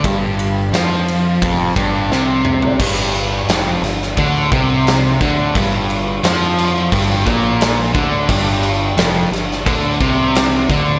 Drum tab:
CC |----------------|x-x-x-x-x-x-x-x-|x-x-x-x-x-x-x-x-|x-x-x-x-x-x-x-x-|
RD |x-x-x-x-x-x-----|----------------|----------------|----------------|
SD |----o-------o---|----o-oo----o---|----o-------o---|----o-oo----o---|
T2 |--------------o-|----------------|----------------|----------------|
FT |---------------o|----------------|----------------|----------------|
BD |o-------o-o-----|o-------o-o---o-|o-------o-o---o-|o-------o-o---o-|